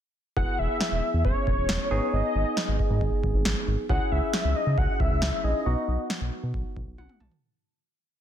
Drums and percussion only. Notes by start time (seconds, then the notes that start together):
0.37 kick
0.81 snare
1.25 kick
1.47 kick
1.69 snare
2.57 snare
2.79 kick
3.01 kick
3.24 kick
3.45 snare
3.90 kick
4.33 snare
4.78 kick
5.00 kick
5.22 snare
6.10 snare
6.54 kick
6.77 kick
6.98 high tom
7.09 mid tom
7.20 mid tom
7.31 floor tom